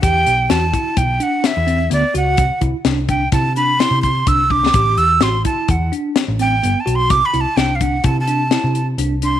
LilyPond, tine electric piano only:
\new Staff \with { instrumentName = "Tine electric piano" } { \time 5/4 \key d \mixolydian \tempo 4 = 127 g'4 fis'8 e'4 d'4 c'8 b8 fis'8~ | fis'8 e'8 d'8 d'8 e'8 d'8 e'4 d'8 d'8 | g'4 fis'8 e'4 d'4 c'8 b8 fis'8~ | fis'8 e'8 d'8 d'8 e'8 d'8 e'4 d'8 d'8 | }